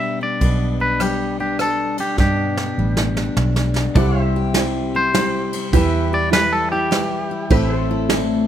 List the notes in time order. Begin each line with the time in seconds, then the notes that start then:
Already playing: G2 B2 G3 B3 D4 E5
0.21 D4 D5
0.41 B1 B2 B3 D4 B4, kick, ride
0.80 D4 B4
1.00 G3 G4, cross-stick, ride
1.40 D4 G4
1.59 G3 A4, cross-stick, ride
1.98 D4 G4, ride
2.18 G2 B2 B3 D4 G4, kick, snare
2.57 snare
2.78 A1 G3
2.97 snare
3.17 D4, snare
3.37 B1 A2, snare
3.56 snare
3.76 B2, snare
3.95 C2 C3 G3 C4 E4 G4 A4 C5 D5 F#5, kick, ride
3.99 G4
4.20 G4 C5 E5
4.36 G4
4.54 G3 E4 G4 C5, snare, ride
4.95 C4 C5
5.14 G3 E4 G4 C5, snare, ride
5.53 C4, ride
5.73 E2 E3 G3 E4 G4 B4 E5, kick, ride
6.13 G4 D5
6.31 G3 E4 G4 B4, snare, ride
6.53 A4
6.72 E4 G4
6.91 G3 E4 G4 B4, snare, ride
7.31 E4
7.50 A1 A2 A3 C4 E4 G4 A4 B4 C5 E5, kick, ride
7.72 C5
7.76 A4
7.91 E4
8.09 A3 E4 A4 D5, snare, ride